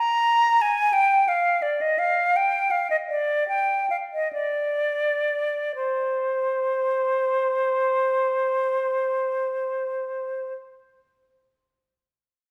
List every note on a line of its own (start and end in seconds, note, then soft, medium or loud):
0.00 0.63 A#5 medium
0.62 0.95 G#5 medium
0.93 1.30 G5 medium
1.28 1.64 F5 medium
1.62 1.83 D5 medium
1.81 2.00 D#5 medium
1.99 2.38 F5 medium
2.36 2.72 G5 medium
2.71 2.90 F5 medium
2.90 2.96 D#5 medium
3.09 3.48 D5 medium
3.48 3.88 G5 medium
3.90 3.96 F5 medium
4.13 4.32 D#5 medium
4.33 5.72 D5 medium
5.75 10.53 C5 medium